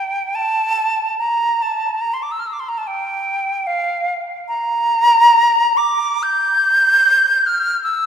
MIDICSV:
0, 0, Header, 1, 2, 480
1, 0, Start_track
1, 0, Tempo, 840336
1, 673, Time_signature, 4, 2, 24, 8
1, 1162, Tempo, 818554
1, 3082, Tempo, 931677
1, 3562, Tempo, 829876
1, 4042, Tempo, 779221
1, 4652, End_track
2, 0, Start_track
2, 0, Title_t, "Flute"
2, 0, Program_c, 0, 73
2, 0, Note_on_c, 0, 79, 90
2, 200, Note_on_c, 0, 81, 96
2, 208, Note_off_c, 0, 79, 0
2, 675, Note_off_c, 0, 81, 0
2, 678, Note_on_c, 0, 82, 88
2, 925, Note_on_c, 0, 81, 84
2, 934, Note_off_c, 0, 82, 0
2, 1149, Note_on_c, 0, 82, 85
2, 1158, Note_off_c, 0, 81, 0
2, 1222, Note_on_c, 0, 84, 65
2, 1231, Note_off_c, 0, 82, 0
2, 1275, Note_on_c, 0, 86, 70
2, 1283, Note_off_c, 0, 84, 0
2, 1327, Note_on_c, 0, 88, 68
2, 1336, Note_off_c, 0, 86, 0
2, 1373, Note_on_c, 0, 89, 70
2, 1382, Note_off_c, 0, 88, 0
2, 1414, Note_on_c, 0, 88, 65
2, 1422, Note_off_c, 0, 89, 0
2, 1453, Note_on_c, 0, 86, 61
2, 1462, Note_off_c, 0, 88, 0
2, 1492, Note_on_c, 0, 84, 62
2, 1501, Note_off_c, 0, 86, 0
2, 1544, Note_on_c, 0, 82, 66
2, 1553, Note_off_c, 0, 84, 0
2, 1597, Note_on_c, 0, 81, 72
2, 1606, Note_off_c, 0, 82, 0
2, 1653, Note_on_c, 0, 79, 84
2, 1661, Note_off_c, 0, 81, 0
2, 2120, Note_on_c, 0, 77, 92
2, 2129, Note_off_c, 0, 79, 0
2, 2440, Note_off_c, 0, 77, 0
2, 2597, Note_on_c, 0, 82, 106
2, 3320, Note_on_c, 0, 86, 96
2, 3327, Note_off_c, 0, 82, 0
2, 3556, Note_on_c, 0, 91, 106
2, 3564, Note_off_c, 0, 86, 0
2, 4285, Note_on_c, 0, 89, 98
2, 4294, Note_off_c, 0, 91, 0
2, 4508, Note_off_c, 0, 89, 0
2, 4512, Note_on_c, 0, 88, 100
2, 4652, Note_off_c, 0, 88, 0
2, 4652, End_track
0, 0, End_of_file